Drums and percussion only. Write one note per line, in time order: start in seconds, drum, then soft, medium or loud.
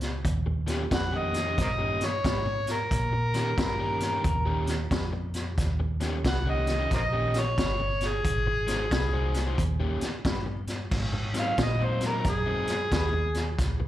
0.01 snare soft
0.01 closed hi-hat medium
0.25 kick medium
0.25 closed hi-hat medium
0.67 snare soft
0.67 closed hi-hat medium
0.91 kick medium
0.91 snare loud
0.91 closed hi-hat medium
1.34 snare soft
1.34 closed hi-hat medium
1.58 kick medium
1.58 snare soft
1.58 closed hi-hat medium
2.01 snare soft
2.01 closed hi-hat medium
2.24 kick medium
2.24 snare loud
2.24 closed hi-hat medium
2.67 snare soft
2.67 closed hi-hat medium
2.91 kick medium
2.91 closed hi-hat medium
3.34 snare soft
3.34 closed hi-hat medium
3.58 kick medium
3.58 snare loud
3.58 closed hi-hat medium
4.00 snare soft
4.00 closed hi-hat medium
4.24 kick medium
4.24 closed hi-hat medium
4.67 snare soft
4.67 closed hi-hat medium
4.91 kick medium
4.91 snare loud
4.91 closed hi-hat medium
5.34 snare soft
5.34 closed hi-hat medium
5.58 kick medium
5.58 snare soft
5.58 closed hi-hat medium
6.00 snare soft
6.00 closed hi-hat medium
6.24 kick medium
6.24 snare loud
6.24 closed hi-hat medium
6.67 snare soft
6.67 closed hi-hat medium
6.91 kick medium
6.91 snare soft
6.91 closed hi-hat medium
7.34 snare soft
7.34 closed hi-hat medium
7.58 kick medium
7.58 snare loud
7.58 closed hi-hat medium
8.01 snare soft
8.01 closed hi-hat medium
8.25 kick medium
8.25 closed hi-hat medium
8.68 snare soft
8.68 closed hi-hat medium
8.91 kick medium
8.91 snare loud
8.91 closed hi-hat medium
9.34 snare soft
9.34 closed hi-hat medium
9.58 kick medium
9.58 closed hi-hat medium
10.01 snare soft
10.01 closed hi-hat medium
10.25 kick medium
10.25 snare loud
10.25 closed hi-hat medium
10.67 snare soft
10.67 closed hi-hat medium
10.91 kick medium
10.91 snare soft
10.91 crash medium
11.34 snare soft
11.34 closed hi-hat medium
11.58 kick medium
11.58 snare loud
11.58 closed hi-hat medium
12.01 snare soft
12.01 closed hi-hat medium
12.24 kick medium
12.24 snare soft
12.24 closed hi-hat medium
12.67 snare soft
12.67 closed hi-hat medium
12.91 kick medium
12.91 snare loud
12.91 closed hi-hat medium
13.34 snare soft
13.34 closed hi-hat medium
13.58 kick medium
13.58 snare soft
13.58 closed hi-hat medium